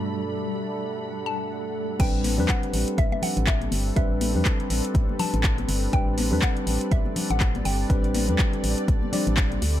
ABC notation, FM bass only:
X:1
M:4/4
L:1/16
Q:"Swing 16ths" 1/4=122
K:Ador
V:1 name="FM bass" clef=bass
z16 | A,,,3 E,, z2 A,,, z A,,, z2 A,,,3 G,,,2 | A,,,3 E,, z2 A,,, z A,,, z2 A,,,3 G,,,2 | A,,,3 E,, z2 A,,, z A,,, z2 A,,,3 G,,,2 |
A,,,3 E,, z2 A,,, z A,,, z2 A,,,3 D,,2 |]